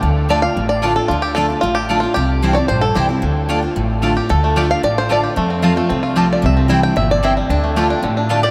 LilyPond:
<<
  \new Staff \with { instrumentName = "Mandolin" } { \time 4/4 \key d \minor \tempo 4 = 225 r1 | r1 | r1 | r1 |
r1 | r1 | r1 | r2. r8 d''8 | }
  \new Staff \with { instrumentName = "Mandolin" } { \time 4/4 \key d \minor r4 <a f' d'' a''>8 r4. <a f' d'' a''>8 r8 | r4 <a f' d'' a''>8 r4. <a f' d'' a''>8 r8 | r4 <c' e' c'' g''>8 r4. <c' e' c'' g''>8 r8 | r4 <a f' d'' a''>8 r4. <a f' d'' a''>8 r8 |
r4 <a f' d'' a''>8 r4. <a f' d'' a''>8 r8 | r4 <c' f' c'' a''>8 r4. <c' f' c'' a''>8 r8 | r4 <c' e' c'' g''>8 r4. <c' e' c'' g''>8 r8 | r4 <a f' d'' a''>8 r4. <a f' d'' a''>8 r8 | }
  \new Staff \with { instrumentName = "Five-string banjo" } { \time 4/4 \key d \minor << { r4 d''8 f''4 d''4 a'8 | f'8 g'8 a'4 f'8 g'8 r8 f'8 | g'4~ g'16. cis''32 d''8 c''8 a'8 g'8 r8 | r2. r8 g'8 |
a'4. f''8 d''8 c''8 d''8 r8 | r2. r8 d''8 | e''4. g''8 e''8 d''8 e''8 r8 | r1 | } \\ { r1 | r1 | r1 | r1 |
r8 a8 g'4. r4 g'8 | a8 c'8 f'8 a8 c'8 f'8 g'4 | r8 c'8 e'4. r4 g8 | d'8 a8 g'8 d'8 d8 d'8 d'8 g'8 | } >> }
  \new Staff \with { instrumentName = "Steel-string acoustic guitar" } { \time 4/4 \key d \minor << { r4 <d a d' f'>8 f'8 r4 <d a d' f'>8 <d' f'>8 | r4 <d a d' f'>8 <d' f'>8 r4 <d a d' f'>8 <d' f'>8 | r4 <e g c' e'>8 <c' e'>8 r4 <e g c' e'>8 <c' e'>8 | r4 <d a d' f'>8 <d' f'>8 r4 <d a d' f'>8 <d' f'>8 |
r4 <d a d' f'>8 <d' f'>8 r4 <d a d' f'>4 | r4 <f a c' f'>8 <c' f'>8 r4 <f a c' f'>4 | r4 <e g c' e'>4 r2 | r4 <d a d' f'>4 r4 <d a d' f'>8 <d' f'>8 | } \\ { d2 a,2 | d2 a,2 | c2 g,2 | d2 a,2 |
d2 a,2 | f,2 c2 | c2 bes,4 c4 | d2 a,2 | } >> }
  \new Staff \with { instrumentName = "Upright bass" } { \clef bass \time 4/4 \key d \minor d,2 a,,2 | d,2 a,,2 | c,2 bes,,4 c,4 | d,2 a,,2 |
d,2 a,,2 | f,2 c,2 | c,2 g,,2 | d,2 a,,2 | }
>>